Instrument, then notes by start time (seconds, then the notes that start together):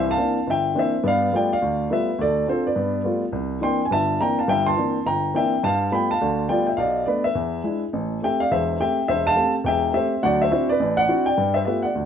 grand piano
Already playing: C2 E3
0.11 F5 A5
0.18 E3 A#3 C4 D4
0.47 G1 E5
0.51 G5
0.75 E3 A#3 C4 D4 C5
0.79 E5
1.04 G2 B3 D5
1.08 F5
1.33 G3 A3 B3 F4 D5 G5
1.52 D5 F5
1.62 D2
1.89 G3 A3 B3 F4 B4 E5
2.19 D2 A4 D5
2.47 C4 D4 F4 A4 C5
2.67 B4 D5
2.76 G2 B3
3.04 G3 A3 B3 F4
3.32 C2
3.61 E3 A#3 C4 D4 G5 C6
3.85 G#5
3.91 G1 G2 E5 A5
4.21 E3 A#3 C4 D4 G5 A#5
4.39 F5 A5
4.48 G1 G2 E5 G5
4.67 A5 C6
4.77 E3 A#3 C4 D4
5.06 G1 G5 A#5
5.34 E3 A#3 C4 D4 E5 G5
5.63 G2 F5 A5
5.91 G3 A3 B3 F4 G5 B5
6.11 F5 A5
6.21 D2 D3
6.49 G3 A3 B3 F4 D5 G5
6.67 E5 G5
6.77 B1 D5 F5
7.06 A3 B3 D4 B4 D5
7.24 B4 E5
7.35 E2
7.64 G#3 D4 E4
7.93 A1
8.22 A3 C4 G4 E5 G5
8.40 D5 F5
8.51 E1 E2 C5 E5
8.79 A3 C4 G4 E5 G5
9.08 E1 C5 E5
9.27 F5 A5
9.36 A3 C4 G4
9.64 E1 E2 G5
9.68 E5
9.93 A3 C4 G4 C5 E5
10.23 D2 F#3 D5 F#5
10.42 C5 E5
10.51 C4 D4 E4 F#4 C5 E5
10.69 B4 D5
10.80 A1
10.97 D5 F#5
11.08 C4 D4 E4 F#4
11.26 D5 G5
11.38 G2
11.54 C5 E5
11.65 A3 B3 F4 G4 B4 E5
11.82 D5 F#5
11.95 D2